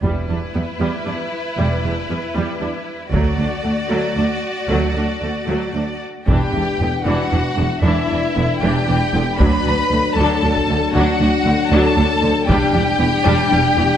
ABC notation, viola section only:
X:1
M:6/8
L:1/8
Q:3/8=77
K:Em
V:1 name="Viola section"
G, [G,D] [G,B,] G, [G,D] z | G, [G,D] [G,B,] G, [G,D] z | [F,A,] [A,D] A, [F,A,] [A,D] z | [F,A,] [A,D] A, [F,A,] [A,D] z |
[E,D] [E,D] [D,B,] [E,D] [E,D] [D,B,] | [E,D] [E,D] [D,B,] [E,D] [E,D] [D,B,] | [F,D] [F,D] [D,A,] [F,D] [F,D] [D,A,] | [F,D] [F,D] [D,A,] [F,D] [F,D] [D,A,] |
[G,D] [G,D] [E,B,] [G,D] [G,D] [E,B,] |]